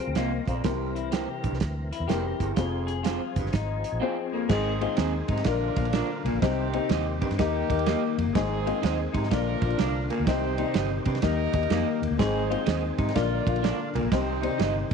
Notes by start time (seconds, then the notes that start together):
Already playing: F3 C4 A#4
0.00 G#4 C5
0.07 D2
0.15 C2 A#3 C4 F4 C5 D#5, snare, closed hi-hat
0.47 A#1 F2 C4 D5 F5, kick, closed hi-hat
0.64 C2 C3 E3 C4 E4 G4 A#4, kick, snare, closed hi-hat
0.95 E4, closed hi-hat
1.11 A#3 E4 G4 C5, snare, closed hi-hat
1.44 A#1 G2, kick, closed hi-hat
1.52 C2, snare
1.60 D2, kick, snare, closed hi-hat
1.92 E4, closed hi-hat
2.00 E2
2.08 F1 E2 A#3 C4 E4 G4 A#4 C5, snare, closed hi-hat
2.40 G1 E2, kick, closed hi-hat
2.56 F1 F2 F3 C4 F4 G#4 C5, kick, snare, closed hi-hat
2.87 G#4, closed hi-hat
3.03 C4 F4 G#4 C5, snare, closed hi-hat
3.36 F1 G2, kick, closed hi-hat
3.44 G1, snare
3.53 G#1 D#4, kick, snare, closed hi-hat
3.84 closed hi-hat
3.92 A#1
4.00 C4 F4 G#4 C5
4.32 F2 A#3
4.48 G#1 G#2 D#3 C4 D#4 G#4 C5 D#5, kick, snare, crash
4.81 C4 D#4 F4 G#4 C5 D#5, ride
4.97 D#2 C4 D#4 G#4 C5, snare, ride
5.28 G#2 C3 D#4, kick, ride
5.37 snare, ride
5.44 A#1 A#2 D3 F3 A#3 D4 F4 A#4 D5, kick, snare, ride
5.76 A#1 A#3 D4 F4 A#4 F5, kick, ride
5.85 ride
5.93 D4 F4 A#4 D5, snare, ride
6.25 C2 A#2 A#3, ride
6.33 A#1
6.40 C2 C3 D#3 C4 D#4 G4 C5 D#5, kick, snare, ride
6.44 D#3
6.73 C4 D#4 G4 C5 D#5, ride
6.89 D#2 D#4 G4 C5 D#5, snare, ride
7.21 G2 C4, kick, ride
7.31 G2, snare, ride
7.38 D#2 D#3 A#3 D#4 G4 A#4 D#5, kick, snare, ride
7.70 D#2 A#3 D#4 G4 A#4 D#5, kick, ride
7.79 ride
7.86 A#3 D#4 G4 A#4 D#5, snare, ride
8.18 F2, ride
8.26 G1
8.33 G#1 G#2 D#3 C4 D#4 G#4 C5 D#5, kick, snare, ride
8.66 C4 D#4 F4 G#4 C5 D#5, ride
8.82 D#2 D#4 G#4 C5 D#5, snare, ride
9.13 G#2 C3 D#4, kick, ride
9.23 snare
9.31 A#1 A#2 D3 F3 A#3 D4 F4 A#4 D5, kick, snare, ride
9.62 A#1 A#3 D4 F4 A#4 D5, kick, ride
9.70 ride
9.78 C2 D4 F4 A#4 D5, snare, ride
10.10 A#2 A#3, ride
10.20 D2
10.27 C2 C3 D#3 G3 C4 D#4 G4 C5 D#5, kick, snare, ride
10.58 C4 D#4 G4 C5 D5, ride
10.64 D#5
10.74 G1 D#4 G4 C5 D#5, snare, ride
11.05 G2 C3 C4, kick, ride
11.15 snare, ride
11.22 D#2 D#3 G3 A#3 D#4 G4 A#4 D#5, kick, snare, ride
11.53 D#2 A#3 D#4 G4 A#4 D#5, kick, ride
11.63 ride
11.70 F2 A#3 D#4 G4 A#4 D#5, snare, ride
12.02 D#2, ride
12.11 D2
12.19 G#1 G#2 G#3 C4 D#4 G#4 C5 D#5, kick, snare, ride
12.50 C4 D#4 F4 G#4 C5 D#5, ride
12.66 D#2 D#4 G#4 C5 D#5, snare, ride
12.98 G#2 C3 D#4, kick, ride
13.09 snare, ride
13.14 A#1 A#2 D3 A#3 D4 F4 A#4 D5, kick, snare, ride
13.47 A#1 A#3 D4 F4 A#4 F5, kick, ride
13.56 ride
13.63 D4 F4 A#4 D5, snare, ride
13.95 C2 A#2 A#3, ride
14.03 A#1
14.11 C2 C3 D#3 G3 C4 D#4 G4 C5 D#5, kick, snare, ride
14.43 C4 D#4 G4 C5 D5, ride
14.49 D#5
14.59 G1 D#4 G4 C5 D#5, snare, ride